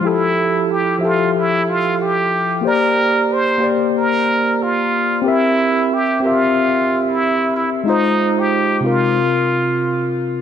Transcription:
X:1
M:4/4
L:1/16
Q:"Swing 16ths" 1/4=92
K:F
V:1 name="Tine electric piano"
[F,EGA]6 [F,GAe]8- [F,GAe]2 | [B,Gcd]6 [B,Gcd]8- [B,Gcd]2 | [CGBe]6 [CGBe]8- [CGBe]2 | [_A,_EFc]6 [C,CFB]8- [C,CFB]2 |]
V:2 name="Muted trumpet"
E4 G2 F2 E2 F2 G4 | B4 c2 z2 B4 F4 | E4 G2 F4- F E3 E2 | _E3 G3 F8 z2 |]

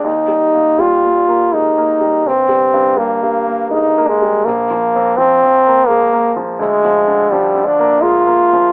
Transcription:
X:1
M:3/4
L:1/8
Q:1/4=83
K:Eb
V:1 name="French horn"
E2 F2 E2 | C2 B,2 E A, | B,2 C2 B, z | A,2 G, D F2 |]
V:2 name="Grand piano" clef=bass
(3E,, G, B,, (3G, B,, B, (3A, B, G, | (3G,,, G, G,, (3G, G,, B, (3A, B, G, | (3B,,, F, F,, (3F, F,, B, (3A, B, F, | (3D,, F, D, (3F, D, B, (3A, B, F, |]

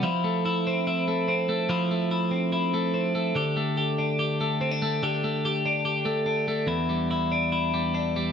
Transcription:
X:1
M:4/4
L:1/16
Q:1/4=144
K:Flyd
V:1 name="Clean electric guitar"
[F,E]2 A,2 E2 C2 E2 A,2 C2 A,2 | [F,E]2 A,2 E2 C2 E2 A,2 C2 A,2 | [D,G]2 A,2 G2 D2 G2 A,2 C D A,2 | [D,G]2 A,2 G2 D2 G2 A,2 D2 A,2 |
[E,,E]2 G,2 E2 D2 E2 G,2 D2 G,2 |]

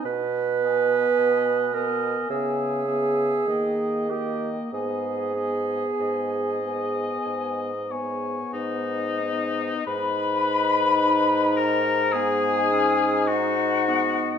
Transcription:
X:1
M:4/4
L:1/8
Q:1/4=51
K:G#m
V:1 name="Flute"
z g2 g g g =g g | g g2 g2 g d2 | b3 a g2 f2 |]
V:2 name="Oboe"
z d2 d e e d d | d d d3 c D2 | B3 A G2 F2 |]
V:3 name="Clarinet"
B3 A G3 =G | G6 z2 | z4 B, C D B, |]
V:4 name="French horn"
z B,2 B, B, B, A, A, | B, B,2 B,2 B,2 B, | D4 D4 |]
V:5 name="Bassoon" clef=bass
B,,2 B,,2 C,2 D,2 | G,,2 G,,2 G,,2 G,,2 | G,,8 |]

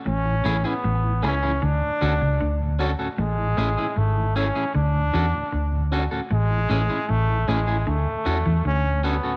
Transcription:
X:1
M:4/4
L:1/16
Q:1/4=77
K:A
V:1 name="Clean electric guitar"
z2 [CEG] [CEG] z2 [CEG] [CEG] z2 [CFA] z3 [CFA] [CFA] | z2 [CEG] [CEG] z2 [CEG] [CEG] z2 [CFA] z3 [CFA] [CFA] | z2 [CEG] [CEG] z2 [CEG] [CEG] z2 [CFA] z3 [CFA] [CFA] |]
V:2 name="Trombone"
C3 B,3 C2 D6 z2 | G,4 A,2 C2 D6 z2 | G,4 A,2 G,2 A,4 C2 B,2 |]
V:3 name="Tonewheel organ"
z2 [A,CG]2 z2 [A,CG]2 z2 [CDF]2 z2 [CDF]2 | z2 [A,CG]2 z2 [A,CG]2 z2 [CDF]2 z2 [CDF]2 | z2 [A,CG]2 z2 [A,CG]2 z2 [CDF]2 z2 [CDF]2 |]
V:4 name="Tonewheel organ" clef=bass
z [A,,E,] z [A,,E,] z [A,,E,] z [A,,E,] z [D,,A,,] z [D,,A,,] z [D,,A,,] z [D,,A,,] | z [A,,E,] z [A,,E,] z [A,,E,] z [A,,E,] z [D,,A,,] z [D,,A,,] z [D,,A,,] z [D,,A,,] | z [A,,E,] z [A,,E,] z [A,,E,] z [A,,E,] z [D,,A,,] z [D,,A,,] z [D,,A,,] z [D,,A,,] |]
V:5 name="Clean electric guitar" clef=bass
A,,2 A,, z A,,2 C,2 D, z D, C, D,2 z2 | A,,2 A,, z G,,2 z2 D,2 E, z D,2 z2 | A,,2 A,, z A,,2 A,,2 D, z E, E, D,2 z2 |]
V:6 name="Fingered electric bass" clef=bass
A,,,2 A,,, z A,,,2 C,,2 D,, z D,, C,, D,,3 z | A,,,2 A,,, z G,,,3 z D,,2 E,, z D,,3 z | A,,,2 A,,, z A,,,2 A,,,2 D,, z E,, E,, D,,3 z |]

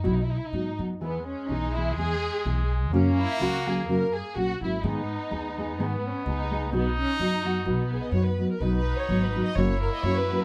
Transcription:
X:1
M:2/4
L:1/16
Q:"Swing" 1/4=126
K:B
V:1 name="Violin section"
(3E D E (3D E D- D2 z2 | B,2 C2 D2 E2 | G6 z2 | C2 E2 F2 G2 |
A2 G2 F2 E2 | D8 | B,2 C2 D4 | B,2 C2 D2 F2 |
B,2 G d c B2 A | B B2 c2 B2 d | c2 A d c B2 A |]
V:2 name="Violin section"
z8 | z8 | z8 | z8 |
z8 | z8 | z8 | z8 |
z8 | [DFB]8 | [A,Fc]8 |]
V:3 name="Nylon-string guitar"
[B,,F,B,DF]2 z2 [F,B,DF]2 [F,B,DF]2 | [E,B,EG]2 z2 [E,B,EG]2 [E,B,EG]2 | [E,B,EG]2 z2 [E,B,EG]2 z2 | [F,,C,F,A,CF]2 z2 [F,A,CF]2 [F,A,CF]2 |
[F,,C,F,A,CF]2 z2 [F,A,CF]2 [F,A,CF]2 | [G,,D,G,B,DG]2 z2 [G,B,DG]2 [G,B,DG]2 | [G,,D,G,B,DG]2 z2 [G,B,DG]2 [G,B,DG]2 | [B,,F,B,DF]2 z2 [F,B,DF]2 [F,B,DF]2 |
[B,,F,B,DF]2 z2 [F,B,DF]2 [F,B,DF]2 | [B,,F,B,DF]2 z2 [F,B,DF]2 [F,B,DF]2 | [F,,C,F,A,CF]2 z2 [F,A,CF]2 [F,A,CF]2 |]
V:4 name="Trumpet"
z8 | G,8- | G,8 | A,8- |
A,6 z2 | B,4 B,4- | B,8 | D8- |
D6 z2 | D8 | E8 |]
V:5 name="Upright bass" clef=bass
B,,,4 G,,2 F,,2 | E,,4 B,,,4 | E,,4 B,,,4 | F,,4 C,,4 |
F,,4 A,,,2 G,,,2 | G,,4 D,,4 | G,,4 C,,4 | B,,,4 F,,4 |
B,,,4 F,,4 | B,,,4 G,,,4 | F,,,4 F,,4 |]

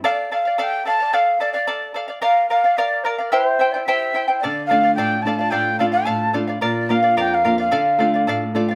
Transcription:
X:1
M:2/4
L:1/16
Q:1/4=110
K:Dm
V:1 name="Quena"
d2 f2 g2 a2 | f2 d d3 z2 | f2 f2 d2 B2 | c3 d e3 z |
d2 f2 g2 a2 | g2 f a3 z2 | d2 f2 g f2 f- | f4- f z3 |]
V:2 name="Charango"
[Adf]2 [Adf] [df] [Adf]2 [Adf] [df] | [Adf]2 [Adf] [df] [Adf]2 [Adf] [df] | [Bdf]2 [Bdf] [df] [Bdf]2 [Bdf] [df] | [EGceg]2 [Eceg] [Ecg] [EGceg]2 [Eceg] [Ecg] |
[Adf]2 [Adf] [df] [Adf]2 [Adf] [df] | [Adf]2 [Adf] [df] [Adf]2 [Adf] [df] | [Bdf]2 [Bdf] [df] [Bdf]2 [Bdf] [df] | [Adf]2 [Adf] [df] [Adf]2 [Adf] [df] |]
V:3 name="Nylon-string guitar"
z8 | z8 | z8 | z8 |
D,2 [A,DF]2 A,,2 [A,DF]2 | A,,2 [A,DF]2 A,,2 [A,DF]2 | B,,2 [B,DF]2 F,,2 [B,DF]2 | D,2 [A,DF]2 A,,2 [A,DF]2 |]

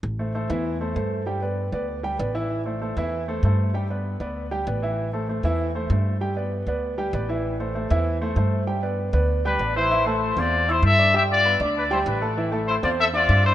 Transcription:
X:1
M:4/4
L:1/16
Q:1/4=194
K:Am
V:1 name="Trumpet section"
z16 | z16 | z16 | z16 |
z16 | z16 | z16 | z8 z2 [DB]4 [Ec]2- |
[Ec]2 [Ec]4 [Fd]4 [Ec]2 [Ae]4 | [Ge]2 [Fd]4 z2 [DB]2 [Ec]2 [DB]3 z | z4 [Ec]2 [Fd]2 [Ae]2 [Fd]4 [Ec]2 |]
V:2 name="Grand piano"
z2 [A,Ac]2 [A,Ac]2 [E,Ee]4 [A,Ac]2 [A,Ac]4 | [G,Gg]2 [B,Bd]4 [B,Bd]4 [G,Gg]2 [B,Bd]2 [E,Ee]2- | [E,Ee]2 [A,Ac]2 [A,Ac]2 [E,Ee]4 [A,Ac]2 [A,Ac]4 | [G,Gg]2 [B,Bd]4 [B,Bd]4 [G,Gg]2 [B,Bd]2 [E,Ee]2- |
[E,Ee]2 [A,Ac]2 [A,Ac]2 [E,Ee]4 [A,Ac]2 [A,Ac]4 | [G,Gg]2 [B,Bd]4 [B,Bd]4 [G,Gg]2 [B,Bd]2 [E,Ee]2- | [E,Ee]2 [A,Ac]2 [A,Ac]2 [E,Ee]4 [A,Ac]2 [A,Ac]4 | [G,Gg]2 [B,Bd]4 [B,Bd]4 [G,Gg]2 [B,Bd]2 [E,Ee]2 |
[E,Ee]2 [A,Aa]4 [Ccc']4 [Eee']4 [Ddd']2 | [G,Gg]4 [B,Bb]2 [Ddd']4 [G,Gg]4 [A,Aa]2 | [E,Ee]2 [A,Aa]4 [Ccc']4 [Cee']4 [Ddd']2 |]
V:3 name="Upright bass" clef=bass
A,,,6 E,,6 G,,4- | G,,6 D,,6 A,,,4- | A,,,6 E,,6 G,,4- | G,,6 D,,6 A,,,4- |
A,,,6 E,,6 G,,4- | G,,6 D,,6 A,,,4- | A,,,6 E,,6 G,,4- | G,,6 D,,6 A,,,4- |
A,,,6 E,,6 G,,4- | G,,6 D,,6 A,,,4- | A,,,6 E,,6 G,,4 |]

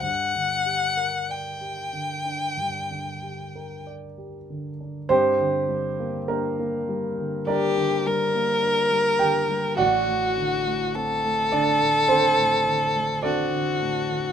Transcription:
X:1
M:4/4
L:1/16
Q:1/4=51
K:Gm
V:1 name="Violin"
^f4 g8 z4 | z8 G2 B6 | ^F4 A8 F4 |]
V:2 name="Grand piano"
z16 | [CGc]4 [B,GB]4 [DBd]6 [Gg]2 | [^Fd^f]6 [Dd]2 [CAc]4 [DAd]4 |]
V:3 name="Grand piano" clef=bass
G,, D, G B d G D, D G,, D, G B d G D, D | G,, D, G, B, D B, G, D, G, D, G, B, D G, D, G, | A,,, A,, D, A, C A, D, A,, D, A,, D, A, C D, A,, D, |]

